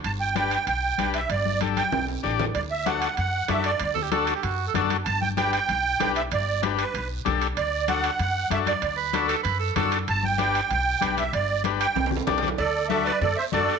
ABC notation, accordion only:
X:1
M:4/4
L:1/8
Q:1/4=191
K:G
V:1 name="Accordion"
a g g2 g3 e | d2 z g2 z3 | d e f2 f2 e d- | d z6 z |
a g g g4 e | d2 z B2 z3 | d2 f2 f2 e d- | d z6 z |
a g g2 g3 e | d2 z g2 z3 | [Ad]2 [Ae] [Bd] [Ad] [ce] [Ad]2 |]